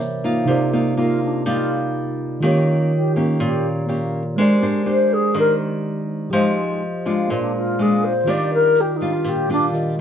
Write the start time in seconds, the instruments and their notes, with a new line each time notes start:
Already playing: tine electric piano C3 E3 A#3 A#4 C5 C#5 E5, nylon-string guitar G3
0.24 nylon-string guitar A#3 D#4 F4, shaker
0.45 tine electric piano C3 D#4 F4 G4, nylon-string guitar C3
0.50 tine electric piano A#4 D5
0.73 nylon-string guitar A#3 D#4 F4
0.97 nylon-string guitar A#3 D#4 F4, alto flute F4
1.23 alto flute D4
1.46 nylon-string guitar G3 A#3 D#4 F4, alto flute F4
2.40 tine electric piano D#3 F4 G4, nylon-string guitar D#3 A#3 C#4 G4
2.45 tine electric piano A#4 C#5
2.94 alto flute G4
3.16 nylon-string guitar A#3 C#4 G4, alto flute D#4
3.40 nylon-string guitar A#2, alto flute G4
3.88 nylon-string guitar A#3 C#4 G4
4.36 tine electric piano G#3 G4 A#4, nylon-string guitar G#3 D4 G4 C5
4.41 tine electric piano C5 D5
4.62 nylon-string guitar D4 G4 C5
4.86 nylon-string guitar D4 G4 C5
4.90 alto flute C5
5.13 alto flute G#4
5.34 nylon-string guitar D#3 D4 G4 C5
5.39 alto flute A#4
6.30 tine electric piano F3 G4, nylon-string guitar F3 G#3 D#4 G4
6.34 tine electric piano C5 D#5
7.05 nylon-string guitar G#3 D4 F4
7.28 nylon-string guitar A#2, tine electric piano A#3 F4 G#4 C5
7.33 alto flute D4, tine electric piano D5
7.56 alto flute F4
7.79 nylon-string guitar G#3 D4 F4, alto flute G#4
8.04 alto flute C5
8.24 tine electric piano D#3 F4 G4, nylon-string guitar D#3 G3 D4 F4, shaker
8.29 tine electric piano A#4 D5, alto flute D5
8.51 alto flute A#4, shaker
8.75 shaker
8.80 alto flute G4
8.96 alto flute D#4
9.00 nylon-string guitar G3 D4 F4, shaker
9.13 alto flute F4
9.24 nylon-string guitar A#2, shaker
9.29 alto flute G4
9.49 nylon-string guitar G3 D4 F4, alto flute D4, shaker
9.72 tine electric piano D#3 F4 G4 A#4 D#5, shaker